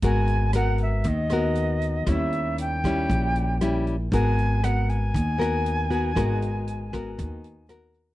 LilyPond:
<<
  \new Staff \with { instrumentName = "Flute" } { \time 4/4 \key gis \minor \tempo 4 = 118 gis''4 fis''8 e''8 dis''2 | e''4 g''2~ g''8 r8 | gis''4 fis''8 gis''2~ gis''8~ | gis''2. r4 | }
  \new Staff \with { instrumentName = "Nylon-string guitar" } { \time 4/4 \key gis \minor << { <b fis' ais'>4 <b fis' ais'>4 r8 <b fis' ais'>4. | <g cis' e'>4. <g cis' e'>4. <g cis' e'>8 r8 | <b fis' ais'>4 <b fis' ais'>4 r8 <b fis' ais'>4 <b fis' ais'>8 | <b fis' ais'>4. <b fis' ais'>4. <b fis' ais'>4 | } \\ { gis2 dis2 | dis2 ais,2 | gis2 dis2 | gis2 dis2 | } >> }
  \new Staff \with { instrumentName = "Upright bass" } { \clef bass \time 4/4 \key gis \minor gis,,2 dis,2 | dis,2 ais,,2 | gis,,2 dis,2 | gis,,2 dis,2 | }
  \new DrumStaff \with { instrumentName = "Drums" } \drummode { \time 4/4 <hh bd>8 hh8 <hh ss>8 hh8 <hh bd>8 <hh ss>8 hh8 hh8 | <hh bd ss>8 hh8 hh8 <hh bd ss>8 <hh bd>8 hh8 <hh ss>8 hh8 | <hh bd>8 hh8 <hh ss>8 hh8 <hh bd>8 <hh ss>8 hh8 hh8 | <hh bd ss>8 hh8 hh8 <hh bd ss>8 <hh bd>8 hh8 <hh ss>8 hh8 | }
>>